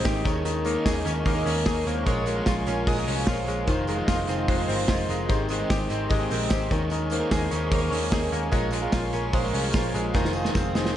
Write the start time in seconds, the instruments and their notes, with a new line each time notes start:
Already playing: clean electric guitar D#3 G#3 C4, synth keys D#4 G4 G#4 A#4 C5 D#5, analog synth pad C5 G5 D#6
0.04 picked electric bass G#1, overdriven electric guitar D#3 G3 C4 D#4, synth keys D#4 G4 G#4 C5, clean electric guitar G4, kick, snare, tambourine
0.24 picked electric bass D#2, overdriven electric guitar D#3 G#3 C#4 G#4 A#4, clean electric guitar D#3, synth keys D#4 G#4 A#4 C#5, analog synth pad A#4 D#5 C#6, kick, hi-hat pedal, open hi-hat, tambourine
0.45 clean electric guitar D#3, hi-hat pedal, open hi-hat, tambourine
0.65 clean electric guitar A#3, synth keys D#4 G#4 A#4 C#5, hi-hat pedal, open hi-hat, tambourine
0.75 overdriven electric guitar D#3 G#3 C#4 G#4 A#4
0.85 picked electric bass D#2, synth keys D#4 G#4 A#4 C#5, clean electric guitar G#4, kick, snare, hi-hat pedal, open hi-hat, tambourine
1.04 picked electric bass D#2, overdriven electric guitar G#3 C#4 G#4 A#4, clean electric guitar C#4, synth keys D#4 G#4 A#4 C#5, hi-hat pedal, open hi-hat, tambourine
1.25 picked electric bass D#2, clean electric guitar A#3, synth keys D#4 G#4 A#4 D#5, kick, hi-hat pedal, open hi-hat, tambourine
1.35 overdriven electric guitar D#3 G#3 C#4 G#4 A#4
1.46 picked electric bass D#2, clean electric guitar C#4, synth keys D#4 G#4 A#4 C#5, hi-hat pedal, open hi-hat, tambourine
1.65 picked electric bass D#2, overdriven electric guitar G#3 C#4 G#4 A#4, synth keys D#4 G#4 A#4 C#5, clean electric guitar G#4, kick, snare, tambourine
1.86 picked electric bass D#2, clean electric guitar A#3, synth keys D#4 G#4 A#4 C5, hi-hat pedal, open hi-hat, tambourine
2.06 picked electric bass A#1, overdriven electric guitar G#3 C#4 F4 C#5, clean electric guitar G#3, synth keys F4 G#4 A#4 C#5, analog synth pad F5 G#5, kick, hi-hat pedal, open hi-hat, tambourine
2.26 clean electric guitar G#3, synth keys F4 G#4 A#4 C#5, hi-hat pedal, open hi-hat, tambourine
2.36 overdriven electric guitar A#2 F3 G#3 C#4 F4 C#5
2.46 picked electric bass A#1, synth keys F4 G#4 A#4 C#5, clean electric guitar F4, kick, snare, hi-hat pedal, open hi-hat, tambourine
2.66 picked electric bass A#1, overdriven electric guitar G#3 C#4 F4 C#5, clean electric guitar C#4, synth keys F4 G#4 A#4 C#5, hi-hat pedal, open hi-hat, tambourine
2.87 picked electric bass A#1, clean electric guitar G#3, synth keys F4 G#4 A#4 D#5, kick, hi-hat pedal, open hi-hat, tambourine
2.97 overdriven electric guitar A#2 F3 G#3 C#4 F4 C#5
3.07 picked electric bass C2, clean electric guitar C#4, synth keys F4 G#4 A#4 C#5, hi-hat pedal, open hi-hat
3.27 picked electric bass A#1, overdriven electric guitar G#3 C#4 F4 C#5, synth keys F4 G#4 A#4 C5, clean electric guitar F4, kick, snare, open hi-hat, tambourine
3.47 picked electric bass A#1, clean electric guitar G#3, synth keys F4 G#4 A#4 C#5, hi-hat pedal, open hi-hat, tambourine
3.67 picked electric bass F1, clean electric guitar D#3, overdriven electric guitar G#3 D#4 F4 C5, analog synth pad G#3 D#5 C6, synth keys D#4 F4 G#4 C5, kick, hi-hat pedal, open hi-hat, tambourine
3.87 clean electric guitar G#3, synth keys D#4 F4 G#4 A#4, hi-hat pedal, open hi-hat, tambourine
3.98 overdriven electric guitar F3 G#3 D#4 F4 C5
4.08 picked electric bass F1, synth keys D#4 F4 G#4 D#5, clean electric guitar F4, kick, snare, hi-hat pedal, open hi-hat, tambourine
4.27 picked electric bass F1, overdriven electric guitar G#3 D#4 F4 C5, clean electric guitar C4, synth keys D#4 F4 G#4 C5, hi-hat pedal, open hi-hat, tambourine
4.48 picked electric bass F1, clean electric guitar G#3, synth keys D#4 F4 G#4 C5, kick, hi-hat pedal, open hi-hat
4.57 overdriven electric guitar F3 G#3 D#4 F4 C5
4.68 picked electric bass G1, clean electric guitar C4, synth keys D#4 F4 G#4 A#4, hi-hat pedal, open hi-hat
4.87 picked electric bass F1, overdriven electric guitar G#3 D#4 F4 C5, synth keys D#4 F4 G#4 C5, clean electric guitar F4, kick, snare, tambourine
5.09 picked electric bass F1, clean electric guitar G#3, synth keys D#4 F4 G#4 A#4, hi-hat pedal, open hi-hat, tambourine
5.29 picked electric bass G#1, clean electric guitar D#3, overdriven electric guitar C4 D#4 G4 C5, synth keys D#4 G4 G#4 C5, analog synth pad G5, kick, hi-hat pedal, open hi-hat, tambourine
5.49 clean electric guitar G#3, synth keys D#4 G4 G#4 C5, hi-hat pedal, open hi-hat, tambourine
5.59 overdriven electric guitar G#3 C4 D#4 G4 C5
5.70 picked electric bass G#1, synth keys D#4 G4 G#4 D#5, clean electric guitar G4, kick, snare, hi-hat pedal, open hi-hat, tambourine
5.89 picked electric bass G#1, overdriven electric guitar C4 D#4 G4 C5, clean electric guitar C4, synth keys D#4 G4 G#4 C5, hi-hat pedal, open hi-hat, tambourine
6.09 picked electric bass G#1, clean electric guitar G#3, synth keys D#4 G4 G#4 D#5, kick, hi-hat pedal, open hi-hat, tambourine
6.20 overdriven electric guitar G#3 C4 D#4 G4 C5
6.30 picked electric bass A#1, clean electric guitar C4, synth keys D#4 G4 G#4 A#4, hi-hat pedal, open hi-hat, tambourine
6.49 picked electric bass G#1, overdriven electric guitar C4 D#4 G4 C5, synth keys D#4 G4 G#4 C5, clean electric guitar G4, kick, snare, tambourine
6.69 picked electric bass D#2, overdriven electric guitar D#3 G#3 C#4 G#4 A#4, clean electric guitar D#3, synth keys D#4 G#4 A#4 C#5, analog synth pad A#4 G#5 C#6, kick, hi-hat pedal, open hi-hat, tambourine
6.90 clean electric guitar D#3, hi-hat pedal, open hi-hat, tambourine
7.10 clean electric guitar A#3, synth keys D#4 G#4 A#4 C5, hi-hat pedal, open hi-hat, tambourine
7.20 overdriven electric guitar D#3 G#3 C#4 G#4 A#4
7.31 picked electric bass D#2, synth keys D#4 G#4 A#4 D#5, clean electric guitar G#4, kick, snare, hi-hat pedal, open hi-hat, tambourine
7.50 picked electric bass D#2, overdriven electric guitar G#3 C#4 G#4 A#4, clean electric guitar C#4, synth keys D#4 G#4 A#4 C5, hi-hat pedal, open hi-hat, tambourine
7.71 picked electric bass D#2, clean electric guitar A#3, synth keys D#4 G#4 A#4 C#5, kick, hi-hat pedal, open hi-hat, tambourine
7.81 overdriven electric guitar D#3 G#3 C#4 G#4 A#4
7.91 picked electric bass D#2, clean electric guitar C#4, synth keys D#4 G#4 A#4 C#5 D#5, hi-hat pedal, open hi-hat, tambourine
8.11 picked electric bass D#2, overdriven electric guitar G#3 C#4 G#4 A#4, synth keys D#4 G#4 A#4 C#5 G5, clean electric guitar G#4, kick, snare, open hi-hat, tambourine
8.32 picked electric bass D#2, clean electric guitar A#3, synth keys D#4 G#4 A#4 C#5 G#5, hi-hat pedal, open hi-hat, tambourine
8.51 picked electric bass A#1, overdriven electric guitar G#3 C#4 F4 A#4, clean electric guitar G#3, synth keys F4 G#4 A#4 C#5, analog synth pad F5 G#5 C#6, kick, hi-hat pedal, open hi-hat, tambourine
8.71 clean electric guitar G#3, synth keys F4 G#4 A#4 C#5, hi-hat pedal, open hi-hat, tambourine
8.82 overdriven electric guitar A#2 F3 G#3 C#4 F4 A#4
8.92 picked electric bass A#1, clean electric guitar F4, synth keys F4 G#4 A#4 C#5, kick, snare, hi-hat pedal, open hi-hat, tambourine
9.12 picked electric bass A#1, overdriven electric guitar G#3 C#4 F4 A#4, clean electric guitar C#4, synth keys F4 G#4 A#4 C#5, hi-hat pedal, open hi-hat, tambourine
9.33 picked electric bass A#1, clean electric guitar G#3, synth keys F4 G#4 A#4 C5, kick, hi-hat pedal, open hi-hat, tambourine
9.43 overdriven electric guitar A#2 F3 G#3 C#4 F4 A#4
9.53 picked electric bass C2, clean electric guitar C#4, synth keys F4 G#4 A#4 C#5, hi-hat pedal, open hi-hat
9.73 picked electric bass A#1, overdriven electric guitar G#3 C#4 F4 A#4, synth keys F4 G#4 A#4 C#5, clean electric guitar F4, kick, snare, hi-hat pedal, open hi-hat, tambourine
9.94 picked electric bass A#1, clean electric guitar G#3, synth keys F4 G#4 A#4 C#5, hi-hat pedal, open hi-hat, tambourine
10.14 picked electric bass F1, clean electric guitar D#3, overdriven electric guitar G#3 D#4 F4 C5, synth keys F4 G#4 C5 D#5, analog synth pad C5 D#6, kick, snare, tambourine
10.25 snare
10.33 clean electric guitar D#3, synth keys F4 G#4 C5 D#5, tambourine
10.45 overdriven electric guitar F3 G#3 D#4 F4 C5, snare
10.54 picked electric bass F1, clean electric guitar C4, synth keys F4 G#4 C5 F5, kick, snare, tambourine
10.74 picked electric bass F1, overdriven electric guitar G#3 D#4 F4 C5, clean electric guitar G#3, synth keys F4 G#4 C5 D#5, snare, tambourine
10.85 snare